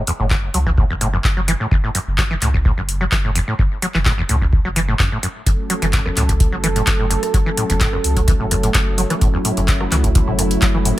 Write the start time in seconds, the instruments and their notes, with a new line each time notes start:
0.07 acid bass E2, open hi-hat
0.20 sub bass F#1, acid bass A2
0.30 acid bass F#2, kick, clap
0.54 sub bass C#2, acid bass F#3, open hi-hat
0.66 acid bass E3, kick
0.78 acid bass A2, kick
0.90 sub bass F#1, acid bass E2
1.01 acid bass A2, open hi-hat
1.13 acid bass F#2
1.24 sub bass F#1, kick, clap
1.37 acid bass F#3
1.48 acid bass E3, open hi-hat
1.60 acid bass A2
1.71 sub bass F#1, acid bass E2, kick
1.84 acid bass A2
1.95 acid bass F#2, open hi-hat
2.07 sub bass F#1
2.18 acid bass F#3, kick, clap
2.31 acid bass E3
2.41 sub bass C#2, acid bass A2, clap, open hi-hat
2.54 acid bass E2, kick
2.65 acid bass A2, kick
2.77 sub bass F#1, acid bass F#2
2.89 open hi-hat
3.01 acid bass F#3
3.12 sub bass F#1, acid bass E3, kick, clap
3.24 acid bass A2
3.35 acid bass E2, open hi-hat
3.48 acid bass A2
3.59 sub bass F#1, acid bass F#2, kick
3.82 acid bass F#3, open hi-hat
3.94 sub bass F#1, acid bass E3, clap
4.05 acid bass A2, kick, clap
4.18 acid bass E2
4.29 sub bass C#2, acid bass A2, open hi-hat
4.42 acid bass F#2, kick
4.53 kick
4.65 sub bass F#1, acid bass F#3
4.76 acid bass E3, open hi-hat
4.88 acid bass A2
4.99 acid bass E2, sub bass F#2, kick, clap
5.12 acid bass A2
5.23 acid bass F#2, open hi-hat
5.46 sub bass F#1, acid bass F#2, analog synth pad F#3 A3 C#4 A4, kick, closed hi-hat
5.70 acid bass F#3, open hi-hat
5.82 sub bass F#1, acid bass E3, closed hi-hat
5.93 acid bass A2, kick, clap, closed hi-hat
6.06 acid bass E2, cross-stick
6.16 sub bass C#2, acid bass A2, clap, open hi-hat
6.29 acid bass F#2, kick, closed hi-hat
6.40 kick, closed hi-hat
6.52 sub bass F#1, acid bass F#3
6.64 acid bass E3, cross-stick, open hi-hat
6.76 acid bass A2, closed hi-hat
6.87 sub bass F#1, acid bass E2, kick, clap, closed hi-hat
6.99 acid bass A2
7.10 acid bass F#2, open hi-hat
7.23 cross-stick, closed hi-hat
7.34 sub bass F#1, acid bass F#3, kick, closed hi-hat
7.46 acid bass E3
7.57 acid bass A2, open hi-hat
7.70 sub bass F#1, acid bass E2, closed hi-hat
7.81 acid bass A2, kick, clap, closed hi-hat
7.93 acid bass F#2, cross-stick
8.04 sub bass C#2, open hi-hat
8.16 acid bass F#3, kick, closed hi-hat
8.28 acid bass E3, kick, closed hi-hat
8.40 sub bass F#1, acid bass A2
8.51 acid bass E2, cross-stick, open hi-hat
8.63 acid bass A2, closed hi-hat
8.74 sub bass F#1, acid bass F#2, kick, clap, closed hi-hat
8.98 acid bass F#3, open hi-hat
9.10 acid bass E3, cross-stick, closed hi-hat
9.21 sub bass F#1, acid bass A2, analog synth pad E4, kick, closed hi-hat
9.34 acid bass E2
9.45 acid bass A2, open hi-hat
9.57 sub bass F#1, acid bass F#2, closed hi-hat
9.68 kick, clap, closed hi-hat
9.81 acid bass F#3, cross-stick
9.91 sub bass C#2, acid bass E3, clap, open hi-hat
10.04 acid bass A2, kick, closed hi-hat
10.15 acid bass E2, kick, closed hi-hat
10.27 sub bass F#1, acid bass A2
10.39 acid bass F#2, cross-stick, open hi-hat
10.51 closed hi-hat
10.62 sub bass F#1, acid bass F#3, kick, clap, closed hi-hat
10.74 acid bass E3
10.85 acid bass A2, open hi-hat